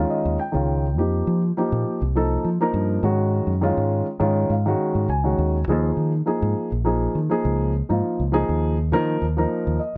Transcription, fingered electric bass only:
0.25 0.36 D#2 medium
0.55 0.98 C#2 medium
0.98 1.22 F2 medium
1.27 1.51 F3 medium
1.72 1.83 A#2 medium
2.02 2.36 C2 medium
2.45 2.57 F3 medium
2.74 2.98 G2 medium
3.03 3.39 G#2 medium
3.47 3.71 F#2 medium
3.77 4.01 G#2 medium
4.20 4.44 G#2 medium
4.50 4.74 G#2 medium
4.95 5.06 G#2 medium
5.08 5.35 C#2 medium
5.38 5.67 D#2 medium
5.67 5.91 D#2 medium
5.97 6.21 D#3 medium
6.42 6.53 G#2 medium
6.72 7.07 A#1 medium
7.15 7.28 D#3 medium
7.45 7.81 C#2 medium
7.90 8.01 G#2 medium
8.20 8.43 C#2 medium
8.49 8.93 D#2 medium
8.92 9.15 D#3 medium
9.22 9.45 D#2 medium
9.67 9.78 D#2 medium

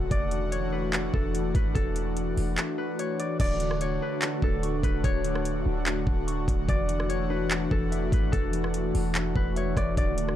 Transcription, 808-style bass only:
0.00 0.10 D1 loud
0.11 1.10 E1 loud
1.14 1.53 E1 loud
1.55 1.75 G#1 loud
1.75 2.35 E1 loud
2.37 2.57 E1 medium
3.40 3.99 D1 loud
4.42 4.82 D1 loud
4.84 5.03 D1 loud
5.04 5.63 D1 loud
5.66 6.05 D1 loud
6.07 6.46 D1 loud
6.48 6.68 D1 loud
6.69 7.67 E1 loud
7.71 8.11 E1 loud
8.12 8.32 G#1 loud
8.33 8.92 E1 loud
8.95 9.34 E1 loud
9.36 9.75 E1 loud
9.77 9.96 E1 loud
9.97 10.36 D1 loud

